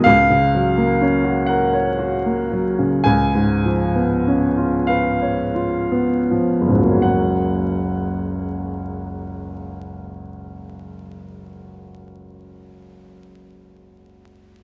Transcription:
upright piano
0.04 C#2 F5
0.30 C#3
0.54 F#3
0.77 A#3
1.01 C#4
1.24 F#4
1.46 A#4 F#5
1.73 C#5
1.99 F#4
2.26 A#3
2.52 F#3
2.79 C#3
3.04 C#2 G#5
3.35 G#2
3.65 F3
3.95 B3
4.27 C#4
4.57 F4
4.87 B4 F5
5.22 C#5
5.55 F4
5.91 B3
6.31 F3
6.61 F#1
6.68 C#2 G#2
6.75 F#3
6.82 A#3
6.90 C#4
6.97 F#4
7.02 F#5

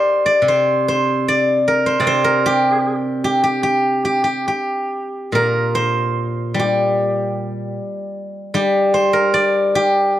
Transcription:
guzheng
Already playing: G4 A#4 C5 D5
0.26 D5
0.42 C3
0.48 C5
0.88 C5
1.28 D5
1.68 A#4
1.86 C5
2.00 C3 D5
2.07 C5
2.24 A#4
2.46 G4
3.24 G4
3.44 G4
3.63 G4
4.05 G4
4.24 G4
4.48 G4
5.32 A#2 A#4
5.75 C5
6.54 G3
6.59 G4
8.54 G3 G4
8.94 C5
9.13 A#4
9.34 D5
9.75 G4

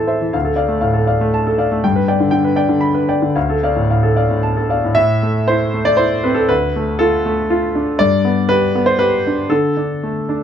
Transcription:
grand piano
Already playing: A2 E3 A4 C5 E5 A5
0.07 C5 E5
0.21 E3
0.33 D2 F5
0.45 A4
0.56 D5 F5
0.68 A3
0.81 A2 F5
0.94 A4
1.07 D5 F5
1.21 A3
1.34 A5
1.47 A4
1.58 D5 F5
1.72 A3
1.84 G2 G5
1.96 B4
2.08 D5 G5
2.20 D3
2.31 D3 G5
2.44 B4
2.56 D5 G5
2.69 D3
2.81 B5
2.94 B4
3.09 D5 G5
3.22 D3
3.36 D2 F5
3.50 A4
3.63 D5 F5
3.75 A2
3.90 A2 F5
4.03 A4
4.16 D5 F5
4.30 A2
4.43 A5
4.57 A4
4.70 D5 F5
4.84 A2
4.95 A2 E5
5.23 A3
5.48 E4 C5
5.74 A3
5.85 D5
5.97 E4 C5
6.24 C4 B4
6.34 A4
6.49 D2 B4
6.76 A3
6.99 F4 A4
7.26 A3
7.50 F4
7.75 D4
7.99 G2 D5
8.25 B3
8.49 G4 B4
8.75 B3
8.86 C5
8.99 G4 B4
9.27 D4
9.50 D3 A4
9.77 D4
10.03 A3
10.29 D4

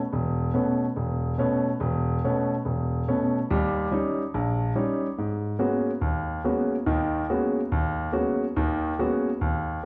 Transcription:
grand piano
0.13 E1
0.53 B2 A3 B3 C#4
0.96 E1
1.38 B2 A3 B3 C#4
1.80 E1
2.24 B2 A3 B3 C#4
2.65 E1
3.08 B2 A3 B3 C#4
3.50 D#2 G3
3.91 G3 C#4 D#4
4.34 A#1
4.75 G3 C#4 D#4
5.18 G#2
5.59 G#3 A#3 B3 C#4 F#4
6.01 D#2
6.44 G#3 A#3 B3 C#4 F#4
6.86 D#2 D#3
7.30 G#3 A#3 B3 C#4 F#4
7.72 D#2
8.12 G#3 A#3 B3 C#4 F#4
8.56 D#2 D#3
8.99 G#3 A#3 B3 C#4 F#4
9.41 D#2

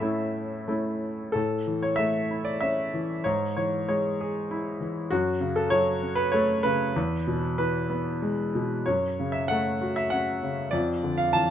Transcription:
grand piano
Already playing: A2 E5
0.01 A3 C#4 E4
0.68 A3 C#4 E4
1.32 A2 A4
1.67 E3
1.82 C#5
1.96 A3 E5
2.31 E4
2.45 D5
2.61 C#4 E5
2.94 E3
3.24 G#2 C#5
3.57 E3 C#5
3.88 G#3 C#5
4.21 G#4
4.51 E4
4.81 E3
5.10 F#2 F#4
5.41 C#3
5.56 A4
5.70 F#3 C#5
6.02 C#4
6.15 B4
6.32 A3 C#5
6.63 C#3 B4
6.96 E2
7.27 B2
7.58 E3 B4
7.90 B3
8.22 G#3
8.55 B2
8.86 F#2 C#5
9.19 C#3
9.32 E5
9.48 A3 F#5
9.81 F#4
9.96 E5
10.10 C#4 F#5
10.43 C#3
10.71 F2 D5
11.03 D3
11.18 F5
11.33 E3 A5

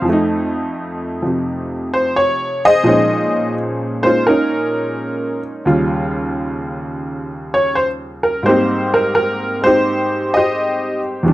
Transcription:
honky-tonk piano
0.02 F2 F3
0.09 A3 D#4
1.22 C3 F3
1.94 C5
2.16 C#5
2.65 G#4 C5 D#5
2.83 A#2 F3 G#3 C#4 C5
2.88 D#4
4.03 G#3 A#3 C#4 D#4 F4 C5
4.27 C#4 D#4 A#4
5.65 D#2 C#3 G3 F4
7.54 C#5
7.75 C5
8.23 A#4
8.43 G#2 G3 A#3 C5
8.48 C4 D#4 G4
8.94 A#4
9.15 A#4
9.61 G#3 C4 C5
9.66 D#4 G4
10.34 G4 C5 D#5
11.23 E2 E3 G3
11.28 D4

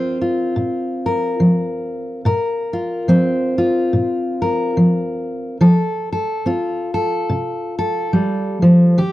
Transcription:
steel-string acoustic guitar
Already playing: F3 C4 F4 A#4
0.21 F4
0.56 A#2
1.06 A#4
1.40 F3
2.25 A#2 A#4
2.73 F4
3.08 F3 C4
3.58 F4
3.93 A#2
4.42 A#4
4.77 F3
5.61 F3 A4
6.12 A4
6.46 C4 F4
6.94 A4
7.29 C3
7.79 A4
8.13 G3
8.62 F3
8.98 D#3 G4

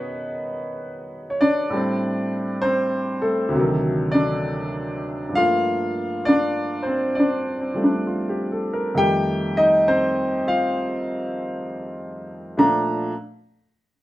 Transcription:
grand piano
Already playing: B2 D#3 B3 C#4 D#4 F#4 B4 C#5 D#5 F#5
1.30 C#5
1.41 D4 D5
1.70 A2 G3 A3
1.75 C4
2.62 C4 C5
3.22 A3 A4
3.49 D2 C3
3.56 D#3 F#3
4.12 D4 D5
5.29 G2 F3
5.35 A3 F4 F5
5.40 A#3
6.25 D4 D5
6.83 C5
6.87 C4
7.15 D5
7.20 D4
7.61 C4
7.74 F3 G3 A3
7.84 D4
8.07 F4
8.29 G4
8.52 A4
8.73 A#4
8.95 F2 D#3 G3 A3 D#4 G4 G5
9.57 D#4 D#5
9.88 C4 C5
10.47 F4 F5
12.57 A#2 F3 A3 D4 A#5

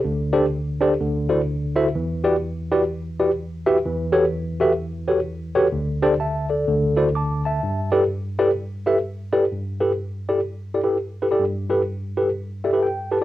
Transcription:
tine electric piano
0.04 D2 D3
0.33 D4 G4 A4 C5 D5
0.81 D4 G4 A4 C5 D5
1.00 D2 D3
1.29 E4 F#4 A4 C5 D5
1.76 E4 F#4 A4 C5 E5
1.95 E2 E3
2.24 E4 F#4 G4 B4 D5
2.71 E4 F#4 G4 B4 D5
3.19 E4 F#4 G4 B4 D5
3.66 E4 F#4 G4 B4 E5
3.86 E2 E3
4.12 F#4 G4 A4 B4 C#5
4.60 F#4 G4 A4 B4 E5
5.08 F#4 G4 A4 B4 C#5
5.55 F#4 G4 A4 B4 C#5
5.72 D2 D3
6.03 D4 G4 A4 C5 D5
6.20 E5 A5
6.50 A4 D5
6.68 D2 D3
6.97 E4 F#4 A4 C5 D5
7.15 A5 D6
7.45 E5 A5
7.63 G2
7.92 E4 G4 A4 B4 D5
8.38 E4 G4 A4 B4 D5
8.86 E4 G4 A4 B4 E5
9.32 E4 G4 A4 B4 D5
9.52 G2
9.80 E4 G4 A4 B4
10.29 E4 G4 A4 D5
10.74 E4 G4 A4 D5
10.83 E4 G4 A4 B4
11.22 E4 G4 A4 B4
11.31 E4 G4 A4 D5
11.39 G2
11.69 E4 G4 A4 B4
12.17 E4 G4 A4 B4
12.64 E4 G4 A4 D5 E5
12.73 E4 G4 A4 B4
12.83 G5
13.11 E4 G4 A4 B4 A5
13.21 E4

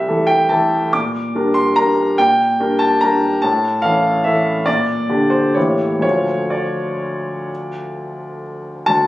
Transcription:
grand piano
Already playing: C2 E5
0.08 E3 A3 A4
0.27 G5
0.49 E3 A3 A4 A5
0.93 A#2 D6
1.35 G3 D4 A#4
1.54 C6
1.76 G3 D4 A#4 A#5
2.18 A#2 G5
2.60 G3 D4 A#4
2.79 A5
3.01 G3 D4 A#4 A#5
3.42 A2 A5
3.82 E3 C#4 A4 F5
4.24 E3 C#4 A4 E5
4.66 A#2 D5
5.09 D3 D4 G4
5.30 C5
5.54 A2 E3 A#3 G4 C#5
5.99 D2 F3 A3 F4 C#5
6.50 D5
8.86 D2 A5

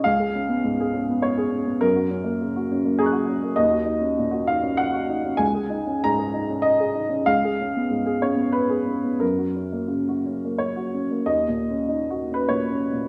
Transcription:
upright piano
0.04 C#2 F5
0.19 G#4
0.35 C#4
0.49 B3
0.64 G#2
0.80 G#4
0.94 C#4
1.09 B3
1.22 C#5
1.38 G#4
1.51 C#4
1.67 B3
1.81 F#2 A#4
1.96 F#4
2.11 C#4
2.24 A#3
2.41 C#3
2.56 F#4
2.72 C#4
2.85 A#3
2.99 G#4 A#5 C#6
3.06 F#6
3.12 F#4
3.29 C#4
3.43 A#3
3.56 D#2 D#5
3.70 F#4
3.85 D#4
4.01 C#4
4.18 A#2
4.31 F#4
4.47 D#4 F5
4.63 C#4
4.77 F#5
4.93 F#4
5.09 D#4
5.25 C#4
5.37 C#2 G#5
5.54 G#4
5.70 D#4
5.87 C#4
6.04 G#2 A#5
6.18 G#4
6.34 D#4
6.50 C#4
6.62 D#5
6.80 G#4
6.95 D#4
7.10 C#4
7.26 C#2 F5
7.44 G#4
7.61 C#4
7.77 B3
7.90 G#2
8.06 G#4
8.22 C#4 C#5
8.36 B3
8.52 B4
8.70 G#4
8.87 C#4
9.04 B3
9.20 F#2 A#4
9.38 F#4
9.56 C#4
9.72 A#3
9.88 C#3
10.09 F#4
10.26 C#4
10.45 A#3
10.58 C#5
10.76 F#4
10.94 C#4
11.11 A#3
11.26 D#2 D#5
11.48 A#2
11.70 C#4
11.89 D#4
12.10 F#4
12.32 C#4 B4
12.49 A#2 C#5
12.71 C#4
12.92 A#2

